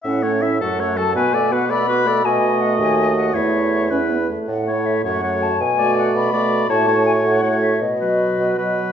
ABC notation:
X:1
M:6/8
L:1/8
Q:3/8=108
K:Bdor
V:1 name="Flute"
f2 e f2 a | g2 f b3 | g2 f g2 f | e4- e z |
f2 e f2 a | g2 f b3 | [K:F#dor] a2 g f2 e | d4- d z |]
V:2 name="Oboe"
e c e A c A | B d B d B d | ^d6 | c3 B2 z |
z c2 c c2 | z d3 d2 | [K:F#dor] c c3 c2 | z B3 B2 |]
V:3 name="Clarinet"
E C E F A F | F A F A F A | F6 | E3 E2 z |
z E2 F F2 | z F3 F2 | [K:F#dor] F F3 F2 | z F3 F2 |]
V:4 name="French horn"
C A, C F, A, F, | B, A, B, A, B, A, | A,6 | A,3 C B, A, |
z A,2 A, A,2 | z A,3 A,2 | [K:F#dor] A, A,3 A,2 | z F,3 F,2 |]
V:5 name="Bassoon" clef=bass
A,,3 F,,3 | B,,6 | B,,3 ^D,,3 | E,,3 E,,2 z |
A,,3 F,,3 | B,,3 B,,3 | [K:F#dor] A,,3 A,,3 | B,,3 B,,3 |]